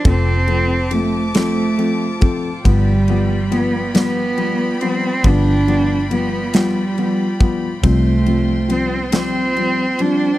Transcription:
<<
  \new Staff \with { instrumentName = "String section" } { \time 6/8 \key g \dorian \tempo 4. = 46 << { <c'' a'' d'''>2. | <d'' g'' b''>2.~ | <d'' g'' b''>2. | <c'' g'' c'''>2. | } \\ { f'2.~ | f'2.~ | f'2.~ | f'2. | } >> }
  \new Staff \with { instrumentName = "Cello" } { \time 6/8 \key g \dorian c'4 a8 a4 r8 | g4 b8 b4 c'8 | d'4 b8 g4 r8 | a4 c'8 c'4 d'8 | }
  \new Staff \with { instrumentName = "Felt piano" } { \clef bass \time 6/8 \key g \dorian <f a c'>8 <f a c'>8 <f a c'>8 <f a c'>8 <f a c'>8 <f a c'>8 | <f g b>8 <f g b>8 <f g b>8 <f g b>8 <f g b>8 <f g b>8 | <f g b>8 <f g b>8 <f g b>8 <f g b>8 <f g b>8 <f g b>8 | <f g c'>8 <f g c'>8 <f g c'>8 <f g c'>8 <f g c'>8 <f g c'>8 | }
  \new Staff \with { instrumentName = "Fingered electric bass" } { \clef bass \time 6/8 \key g \dorian f,,2. | g,,2. | g,,2. | c,2. | }
  \new DrumStaff \with { instrumentName = "Drums" } \drummode { \time 6/8 <bd cymr>8 cymr8 cymr8 <cymr sn>8 cymr8 <bd cymr>8 | <bd cymr>8 cymr8 cymr8 <cymr sn>8 cymr8 cymr8 | <bd cymr>8 cymr8 cymr8 <cymr sn>8 cymr8 <bd cymr>8 | <bd cymr>8 cymr8 cymr8 <cymr sn>8 cymr8 cymr8 | }
>>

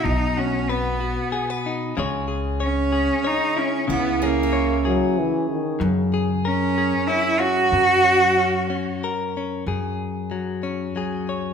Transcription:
<<
  \new Staff \with { instrumentName = "Clean electric guitar" } { \time 3/4 \key fis \mixolydian \tempo 4 = 94 << { r8 fis'8 b'8 fis'8 gis'16 b'16 dis'8 | <gis gis' cis''>8 gis'8 cis''8 gis'8 cis''8 e'8 | r8 gis'8 cis''8 gis'4. | r8 gis'8 ais'8 gis'8 cis'8 cis'8 |
r8 cis'8 cis'8 cis'8 ais'8 cis'8 | gis'4. cis'8 gis'8 cis''8 | } \\ { b,2. | cis2. | cis2 r4 | fis,2. |
fis,2. | fis,4 fis4 fis4 | } >> }
  \new Staff \with { instrumentName = "Steel-string acoustic guitar" } { \time 3/4 \key fis \mixolydian fis'16 r2 r8. | r2. | e'8 cis'16 e''2~ e''16 | r2. |
r2. | r2. | }
  \new Staff \with { instrumentName = "Cello" } { \time 3/4 \key fis \mixolydian dis'8 cis'8 b4. r8 | r4 cis'4 dis'8 cis'8 | b8 ais4 r4. | r4 cis'4 e'8 fis'8~ |
fis'2 r4 | r2. | }
  \new Staff \with { instrumentName = "French horn" } { \clef bass \time 3/4 \key fis \mixolydian r2. | r2. | r4. fis8 e8 dis8 | cis8. r2 r16 |
r2. | r2. | }
  \new Staff \with { instrumentName = "Upright bass" } { \clef bass \time 3/4 \key fis \mixolydian b,,2 r4 | cis,2 r4 | cis,2 r4 | fis,2 r4 |
fis,2 r4 | fis,2 cis,4 | }
>>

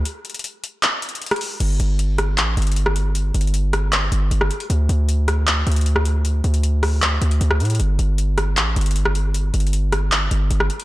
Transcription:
<<
  \new Staff \with { instrumentName = "808-style bass" } { \clef bass \time 4/4 \key d \phrygian \tempo 4 = 155 r1 | g,,8 g,,4. a,,8 g,,4.~ | g,,8 g,,2 g,,8 g,,8 r8 | d,8 d,2 d,4.~ |
d,8 d,2 d,8 d,8 a,8 | g,,8 g,,4. a,,8 g,,4.~ | g,,8 g,,2 g,,8 g,,8 r8 | }
  \new DrumStaff \with { instrumentName = "Drums" } \drummode { \time 4/4 hh8 hh32 hh32 hh32 hh32 hh8 hh8 \tuplet 3/2 { <hc hh>16 r16 r16 hh16 hh16 hh16 } hh32 hh32 <hh ss>32 hh32 hho8 | <cymc hh>8 hh8 hh8 <hh ss>8 <hc hh>8 hh32 hh32 hh32 hh32 hh16 ss16 hh8 | \tuplet 3/2 { hh16 r16 r16 hh16 hh16 hh16 } hh8 <hh ss>8 <hc hh>8 hh8 hh16 ss16 hh16 hh16 | hh8 hh8 hh8 <hh ss>8 <hc hh>8 hh32 hh32 hh32 hh32 hh16 ss16 hh8 |
hh8 hh16 hh16 hh8 <hho ss>8 <hc hh>8 hh16 hh16 hh16 ss16 hh32 hh32 hh32 hh32 | hh8 hh8 hh8 <hh ss>8 <hc hh>8 hh32 hh32 hh32 hh32 hh16 ss16 hh8 | \tuplet 3/2 { hh16 r16 r16 hh16 hh16 hh16 } hh8 <hh ss>8 <hc hh>8 hh8 hh16 ss16 hh16 hh16 | }
>>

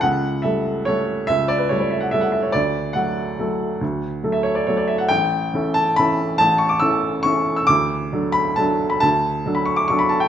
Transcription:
<<
  \new Staff \with { instrumentName = "Grand piano" } { \time 3/4 \key d \major \tempo 4 = 140 fis''4 e''4 cis''4 | e''8 d''16 b'16 cis''16 d''16 e''16 fis''16 e''16 fis''16 e''16 cis''16 | d''4 fis''2~ | fis''4~ fis''16 e''16 cis''16 d''16 cis''16 d''16 e''16 fis''16 |
g''4. a''8 b''4 | a''8 cis'''16 d'''16 e'''4 cis'''8. e'''16 | d'''4. b''8 a''8. b''16 | a''4~ a''16 b''16 cis'''16 d'''16 cis'''16 b''16 a''16 g''16 | }
  \new Staff \with { instrumentName = "Grand piano" } { \time 3/4 \key d \major cis,4 <g a a'>4 <g a a'>4 | cis,4 <g a a'>4 <g a a'>4 | d,4 <fis a a'>4 <fis a a'>4 | d,4 <fis a a'>4 <fis a a'>4 |
a,,4 <e cis' a'>4 <e cis' a'>4 | a,,4 <e cis' a'>4 <e cis' a'>4 | d,4 <fis d' a'>4 <fis d' a'>4 | d,4 <fis d' a'>4 <fis d' a'>4 | }
>>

